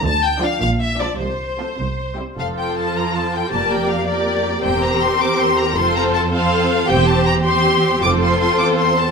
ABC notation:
X:1
M:6/8
L:1/8
Q:3/8=106
K:F
V:1 name="Violin section"
a g f f e d | c4- c z | f g a b a g | a g f d3 |
g b c' d' c' b | c' b a f3 | g a b c'3 | d' c' c' d' c' a |]
V:2 name="Violin section"
z2 [Fd] z2 [Fd] | z2 [FA] z2 [EG] | A6 | [Bd]3 [Bd]3 |
[Bc]6 | [Ac]3 [Ac]3 | [Gc]3 [Gc]3 | [Ac]6 |]
V:3 name="Viola section"
z2 [F,D] z2 [F,D] | z2 [F,C] z2 [G,C] | [F,F]6 | [B,G]3 [B,G]3 |
[CG]6 | [CF]3 [CF]3 | [CG]3 [CG]3 | [CF]6 |]
V:4 name="Cello section" clef=bass
D,3 B,,3 | C,3 C,3 | F,,6 | F,,6 |
E,,6 | F,,6 | E,,6 | F,,3 E,,3 |]
V:5 name="Double bass section" clef=bass
D,,2 z B,,,2 z | C,,2 z C,,2 z | F,,,2 z4 | F,,,2 z4 |
E,,,2 z4 | F,,,2 z4 | E,,,2 z4 | F,,,2 z4 |]